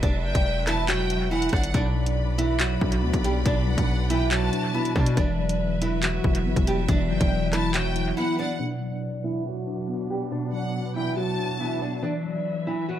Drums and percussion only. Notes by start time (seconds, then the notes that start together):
0.03 kick, closed hi-hat
0.35 kick, closed hi-hat
0.67 cross-stick, clap, closed hi-hat
0.88 clap, closed hi-hat
1.10 closed hi-hat
1.42 closed hi-hat
1.49 kick, cross-stick, closed hi-hat
1.56 closed hi-hat
1.64 closed hi-hat
1.74 kick, closed hi-hat
2.06 closed hi-hat
2.39 closed hi-hat
2.60 clap, closed hi-hat
2.81 kick
2.92 closed hi-hat
3.13 kick, closed hi-hat
3.24 closed hi-hat
3.46 kick, closed hi-hat
3.78 kick, closed hi-hat
4.10 closed hi-hat
4.31 clap, closed hi-hat
4.53 closed hi-hat
4.85 closed hi-hat
4.96 kick
5.06 closed hi-hat
5.17 kick, closed hi-hat
5.49 closed hi-hat
5.82 closed hi-hat
6.03 clap, closed hi-hat
6.24 kick
6.35 closed hi-hat
6.56 kick, closed hi-hat
6.67 closed hi-hat
6.88 kick, closed hi-hat
7.21 kick, closed hi-hat
7.53 cross-stick, clap, closed hi-hat
7.74 clap, closed hi-hat
7.96 closed hi-hat